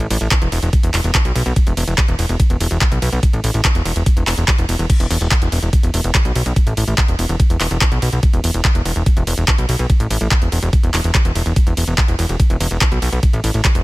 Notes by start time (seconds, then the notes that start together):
0.00 A1, closed hi-hat
0.10 A1, open hi-hat, ride
0.21 A1, closed hi-hat
0.31 kick, clap, closed hi-hat, ride
0.42 E1, closed hi-hat
0.52 E1, open hi-hat, ride
0.63 E1, closed hi-hat
0.73 kick, closed hi-hat, ride
0.83 E1, closed hi-hat
0.94 E1, clap, open hi-hat, ride
1.04 E1, closed hi-hat
1.15 kick, clap, closed hi-hat, ride
1.25 B1, closed hi-hat
1.35 B1, open hi-hat, ride
1.46 B1, closed hi-hat
1.56 kick, closed hi-hat, ride
1.67 E1, closed hi-hat
1.77 E1, open hi-hat, ride
1.88 E1, closed hi-hat
1.98 kick, clap, closed hi-hat, ride
2.08 E1, closed hi-hat
2.19 E1, open hi-hat, ride
2.29 E1, closed hi-hat
2.40 kick, closed hi-hat, ride
2.50 E1, closed hi-hat
2.60 E1, open hi-hat, ride
2.71 E1, closed hi-hat
2.81 kick, clap, closed hi-hat, ride
2.92 B1, closed hi-hat
3.02 B1, open hi-hat, ride
3.13 B1, closed hi-hat
3.23 kick, closed hi-hat, ride
3.33 A1, closed hi-hat
3.44 A1, open hi-hat, ride
3.54 A1, closed hi-hat
3.65 kick, clap, closed hi-hat, ride
3.75 E1, closed hi-hat
3.85 E1, open hi-hat, ride
3.96 E1, closed hi-hat
4.06 kick, closed hi-hat, ride
4.17 E1, closed hi-hat
4.27 E1, clap, open hi-hat, ride
4.38 E1, closed hi-hat
4.48 kick, clap, closed hi-hat, ride
4.58 E1, closed hi-hat
4.69 E1, open hi-hat, ride
4.79 E1, closed hi-hat
4.90 kick, closed hi-hat, crash, ride
5.00 E1, closed hi-hat
5.10 E1, open hi-hat, ride
5.21 E1, closed hi-hat
5.31 kick, clap, closed hi-hat, ride
5.42 E1, closed hi-hat
5.52 E1, open hi-hat, ride
5.63 E1, closed hi-hat
5.73 kick, closed hi-hat, ride
5.83 E1, closed hi-hat
5.94 E1, open hi-hat, ride
6.04 E1, closed hi-hat
6.15 kick, clap, closed hi-hat, ride
6.25 B1, closed hi-hat
6.35 B1, open hi-hat, ride
6.46 B1, closed hi-hat
6.56 kick, closed hi-hat, ride
6.67 A1, closed hi-hat
6.77 A1, open hi-hat, ride
6.88 A1, closed hi-hat
6.98 kick, clap, closed hi-hat, ride
7.08 E1, closed hi-hat
7.19 E1, open hi-hat, ride
7.29 E1, closed hi-hat
7.40 kick, closed hi-hat, ride
7.50 E1, closed hi-hat
7.60 E1, clap, open hi-hat, ride
7.71 E1, closed hi-hat
7.81 kick, clap, closed hi-hat, ride
7.92 B1, closed hi-hat
8.02 B1, open hi-hat, ride
8.13 B1, closed hi-hat
8.23 kick, closed hi-hat, ride
8.33 E1, closed hi-hat
8.44 E1, open hi-hat, ride
8.54 E1, closed hi-hat
8.65 kick, clap, closed hi-hat, ride
8.75 E1, closed hi-hat
8.85 E1, open hi-hat, ride
8.96 E1, closed hi-hat
9.06 kick, closed hi-hat, ride
9.17 E1, closed hi-hat
9.27 E1, open hi-hat, ride
9.38 E1, closed hi-hat
9.48 kick, clap, closed hi-hat, ride
9.58 B1, closed hi-hat
9.69 B1, open hi-hat, ride
9.79 B1, closed hi-hat
9.90 kick, closed hi-hat, ride
10.00 A1, closed hi-hat
10.10 A1, open hi-hat, ride
10.21 A1, closed hi-hat
10.31 kick, clap, closed hi-hat, ride
10.42 E1, closed hi-hat
10.52 E1, open hi-hat, ride
10.63 E1, closed hi-hat
10.73 kick, closed hi-hat, ride
10.83 E1, closed hi-hat
10.94 E1, clap, open hi-hat, ride
11.04 E1, closed hi-hat
11.15 kick, clap, closed hi-hat, ride
11.25 E1, closed hi-hat
11.35 E1, open hi-hat, ride
11.46 E1, closed hi-hat
11.56 kick, closed hi-hat, ride
11.67 E1, closed hi-hat
11.77 E1, open hi-hat, ride
11.88 E1, closed hi-hat
11.98 kick, clap, closed hi-hat, ride
12.08 E1, closed hi-hat
12.19 E1, open hi-hat, ride
12.29 E1, closed hi-hat
12.40 kick, closed hi-hat, ride
12.50 E1, closed hi-hat
12.60 E1, open hi-hat, ride
12.71 E1, closed hi-hat
12.81 kick, clap, closed hi-hat, ride
12.92 B1, closed hi-hat
13.02 B1, open hi-hat, ride
13.13 B1, closed hi-hat
13.23 kick, closed hi-hat, ride
13.33 A1, closed hi-hat
13.44 A1, open hi-hat, ride
13.54 A1, closed hi-hat
13.65 kick, clap, closed hi-hat, ride
13.75 E1, closed hi-hat